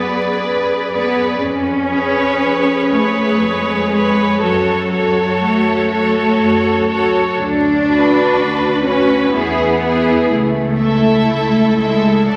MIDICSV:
0, 0, Header, 1, 6, 480
1, 0, Start_track
1, 0, Key_signature, 3, "minor"
1, 0, Tempo, 996678
1, 684, Time_signature, 3, 2, 24, 8
1, 3083, Tempo, 980392
1, 6002, End_track
2, 0, Start_track
2, 0, Title_t, "Violin section"
2, 0, Program_c, 0, 48
2, 0, Note_on_c, 0, 74, 28
2, 436, Note_off_c, 0, 74, 0
2, 441, Note_on_c, 0, 74, 27
2, 677, Note_off_c, 0, 74, 0
2, 918, Note_on_c, 0, 73, 32
2, 1390, Note_off_c, 0, 73, 0
2, 1403, Note_on_c, 0, 73, 31
2, 1878, Note_off_c, 0, 73, 0
2, 1888, Note_on_c, 0, 73, 32
2, 2121, Note_off_c, 0, 73, 0
2, 2129, Note_on_c, 0, 73, 33
2, 2360, Note_off_c, 0, 73, 0
2, 2373, Note_on_c, 0, 73, 35
2, 2840, Note_off_c, 0, 73, 0
2, 2856, Note_on_c, 0, 73, 36
2, 3318, Note_off_c, 0, 73, 0
2, 3334, Note_on_c, 0, 73, 33
2, 3561, Note_off_c, 0, 73, 0
2, 3798, Note_on_c, 0, 71, 38
2, 4265, Note_off_c, 0, 71, 0
2, 4273, Note_on_c, 0, 71, 37
2, 4509, Note_off_c, 0, 71, 0
2, 4521, Note_on_c, 0, 71, 38
2, 4747, Note_off_c, 0, 71, 0
2, 4753, Note_on_c, 0, 71, 37
2, 4992, Note_off_c, 0, 71, 0
2, 5234, Note_on_c, 0, 76, 41
2, 5710, Note_off_c, 0, 76, 0
2, 5723, Note_on_c, 0, 76, 35
2, 5960, Note_off_c, 0, 76, 0
2, 5961, Note_on_c, 0, 74, 37
2, 6002, Note_off_c, 0, 74, 0
2, 6002, End_track
3, 0, Start_track
3, 0, Title_t, "Violin section"
3, 0, Program_c, 1, 48
3, 0, Note_on_c, 1, 71, 29
3, 440, Note_off_c, 1, 71, 0
3, 455, Note_on_c, 1, 71, 27
3, 684, Note_off_c, 1, 71, 0
3, 926, Note_on_c, 1, 71, 29
3, 1394, Note_off_c, 1, 71, 0
3, 1412, Note_on_c, 1, 71, 32
3, 1883, Note_off_c, 1, 71, 0
3, 1894, Note_on_c, 1, 71, 32
3, 2118, Note_on_c, 1, 69, 31
3, 2124, Note_off_c, 1, 71, 0
3, 2355, Note_off_c, 1, 69, 0
3, 2368, Note_on_c, 1, 69, 33
3, 2838, Note_off_c, 1, 69, 0
3, 2846, Note_on_c, 1, 69, 39
3, 3313, Note_off_c, 1, 69, 0
3, 3319, Note_on_c, 1, 69, 36
3, 3553, Note_off_c, 1, 69, 0
3, 3804, Note_on_c, 1, 71, 36
3, 4268, Note_off_c, 1, 71, 0
3, 4290, Note_on_c, 1, 71, 38
3, 4517, Note_off_c, 1, 71, 0
3, 4527, Note_on_c, 1, 68, 39
3, 4757, Note_off_c, 1, 68, 0
3, 4767, Note_on_c, 1, 68, 37
3, 5000, Note_off_c, 1, 68, 0
3, 5238, Note_on_c, 1, 69, 36
3, 5712, Note_off_c, 1, 69, 0
3, 5720, Note_on_c, 1, 69, 38
3, 5959, Note_off_c, 1, 69, 0
3, 5965, Note_on_c, 1, 69, 40
3, 6002, Note_off_c, 1, 69, 0
3, 6002, End_track
4, 0, Start_track
4, 0, Title_t, "Viola section"
4, 0, Program_c, 2, 48
4, 0, Note_on_c, 2, 68, 27
4, 433, Note_off_c, 2, 68, 0
4, 441, Note_on_c, 2, 68, 29
4, 677, Note_off_c, 2, 68, 0
4, 917, Note_on_c, 2, 68, 31
4, 1389, Note_off_c, 2, 68, 0
4, 1399, Note_on_c, 2, 68, 29
4, 1876, Note_off_c, 2, 68, 0
4, 1888, Note_on_c, 2, 68, 35
4, 2121, Note_off_c, 2, 68, 0
4, 2130, Note_on_c, 2, 66, 34
4, 2361, Note_off_c, 2, 66, 0
4, 2373, Note_on_c, 2, 66, 33
4, 2840, Note_off_c, 2, 66, 0
4, 2848, Note_on_c, 2, 66, 34
4, 3314, Note_off_c, 2, 66, 0
4, 3329, Note_on_c, 2, 66, 38
4, 3558, Note_off_c, 2, 66, 0
4, 3804, Note_on_c, 2, 66, 36
4, 4268, Note_off_c, 2, 66, 0
4, 4283, Note_on_c, 2, 66, 36
4, 4514, Note_off_c, 2, 66, 0
4, 4519, Note_on_c, 2, 64, 37
4, 4753, Note_off_c, 2, 64, 0
4, 4763, Note_on_c, 2, 64, 42
4, 4997, Note_off_c, 2, 64, 0
4, 5244, Note_on_c, 2, 64, 39
4, 5715, Note_off_c, 2, 64, 0
4, 5725, Note_on_c, 2, 64, 35
4, 5961, Note_off_c, 2, 64, 0
4, 5971, Note_on_c, 2, 66, 38
4, 6002, Note_off_c, 2, 66, 0
4, 6002, End_track
5, 0, Start_track
5, 0, Title_t, "Cello section"
5, 0, Program_c, 3, 48
5, 0, Note_on_c, 3, 59, 40
5, 208, Note_off_c, 3, 59, 0
5, 450, Note_on_c, 3, 59, 44
5, 670, Note_off_c, 3, 59, 0
5, 687, Note_on_c, 3, 61, 53
5, 1402, Note_off_c, 3, 61, 0
5, 1405, Note_on_c, 3, 57, 44
5, 1647, Note_off_c, 3, 57, 0
5, 1650, Note_on_c, 3, 56, 43
5, 2128, Note_off_c, 3, 56, 0
5, 2133, Note_on_c, 3, 54, 51
5, 2599, Note_off_c, 3, 54, 0
5, 2615, Note_on_c, 3, 57, 53
5, 3079, Note_off_c, 3, 57, 0
5, 3561, Note_on_c, 3, 62, 66
5, 4255, Note_off_c, 3, 62, 0
5, 4276, Note_on_c, 3, 61, 58
5, 4515, Note_off_c, 3, 61, 0
5, 4515, Note_on_c, 3, 59, 62
5, 4990, Note_off_c, 3, 59, 0
5, 5001, Note_on_c, 3, 57, 64
5, 5710, Note_off_c, 3, 57, 0
5, 5724, Note_on_c, 3, 56, 55
5, 5964, Note_on_c, 3, 54, 52
5, 5965, Note_off_c, 3, 56, 0
5, 6002, Note_off_c, 3, 54, 0
5, 6002, End_track
6, 0, Start_track
6, 0, Title_t, "Double bass section"
6, 0, Program_c, 4, 48
6, 0, Note_on_c, 4, 42, 32
6, 145, Note_off_c, 4, 42, 0
6, 202, Note_on_c, 4, 42, 36
6, 626, Note_off_c, 4, 42, 0
6, 679, Note_on_c, 4, 41, 36
6, 1100, Note_off_c, 4, 41, 0
6, 1158, Note_on_c, 4, 41, 38
6, 1586, Note_off_c, 4, 41, 0
6, 1640, Note_on_c, 4, 41, 41
6, 2067, Note_off_c, 4, 41, 0
6, 2123, Note_on_c, 4, 42, 41
6, 2546, Note_off_c, 4, 42, 0
6, 2605, Note_on_c, 4, 42, 41
6, 3028, Note_off_c, 4, 42, 0
6, 3078, Note_on_c, 4, 42, 47
6, 3501, Note_off_c, 4, 42, 0
6, 3563, Note_on_c, 4, 38, 46
6, 3980, Note_off_c, 4, 38, 0
6, 4034, Note_on_c, 4, 38, 45
6, 4457, Note_off_c, 4, 38, 0
6, 4513, Note_on_c, 4, 40, 48
6, 4941, Note_off_c, 4, 40, 0
6, 4997, Note_on_c, 4, 37, 47
6, 5424, Note_off_c, 4, 37, 0
6, 5478, Note_on_c, 4, 37, 47
6, 5906, Note_off_c, 4, 37, 0
6, 5959, Note_on_c, 4, 38, 48
6, 6002, Note_off_c, 4, 38, 0
6, 6002, End_track
0, 0, End_of_file